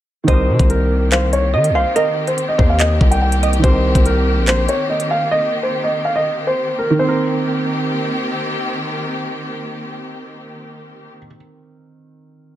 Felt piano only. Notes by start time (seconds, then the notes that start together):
0.24 D#3 C4
0.30 G4 A#4
3.59 D#3 C4
3.65 G4 A#4
6.90 D#3
6.99 C4
7.08 A#4